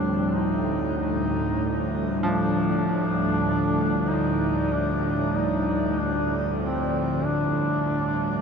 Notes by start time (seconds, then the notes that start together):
Already playing: D2 A2 F3 G3 C4 D4 F4 A4
0.36 D#4
0.97 D#4
1.95 D5
2.22 F3 D4
2.86 D4
4.10 D#4
4.73 D4
5.37 D#4
5.99 D4
6.61 C4
7.25 D4